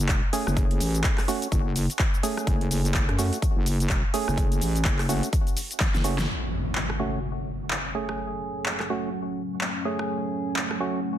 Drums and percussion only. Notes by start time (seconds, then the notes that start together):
0.00 shaker
0.09 kick, clap, closed hi-hat, shaker
0.33 open hi-hat, shaker
0.47 cross-stick, shaker
0.57 kick, closed hi-hat, shaker
0.71 closed hi-hat
0.81 open hi-hat, shaker
0.95 closed hi-hat, shaker
1.04 kick, clap, closed hi-hat, shaker
1.18 cross-stick, clap, open hi-hat, shaker
1.28 open hi-hat, shaker
1.42 closed hi-hat, shaker
1.52 kick, closed hi-hat, shaker
1.76 open hi-hat, shaker
1.90 closed hi-hat, shaker
1.99 kick, clap, closed hi-hat, shaker
2.14 shaker
2.23 open hi-hat, shaker
2.37 cross-stick, closed hi-hat, shaker
2.47 kick, closed hi-hat, shaker
2.61 closed hi-hat
2.71 open hi-hat, shaker
2.85 closed hi-hat, shaker
2.94 kick, clap, closed hi-hat, shaker
3.09 cross-stick, closed hi-hat
3.19 open hi-hat, shaker
3.33 closed hi-hat, shaker
3.42 kick, closed hi-hat, shaker
3.66 open hi-hat, shaker
3.80 closed hi-hat, shaker
3.90 kick, clap, closed hi-hat, shaker
4.14 open hi-hat, shaker
4.28 cross-stick, shaker
4.38 kick, closed hi-hat, shaker
4.52 closed hi-hat, shaker
4.61 open hi-hat, shaker
4.75 closed hi-hat, shaker
4.85 kick, clap, closed hi-hat, shaker
4.99 cross-stick, clap, open hi-hat, shaker
5.09 open hi-hat, shaker
5.23 closed hi-hat, shaker
5.33 kick, closed hi-hat, shaker
5.47 closed hi-hat, shaker
5.57 open hi-hat, shaker
5.71 closed hi-hat, shaker
5.80 kick, snare, clap, closed hi-hat, shaker
5.94 snare, closed hi-hat, shaker
6.04 open hi-hat, shaker
6.18 snare, closed hi-hat, shaker
6.75 clap
6.90 cross-stick
7.71 clap
8.09 cross-stick
8.66 clap
8.80 cross-stick, clap
9.61 clap
9.99 cross-stick
10.56 clap
10.71 cross-stick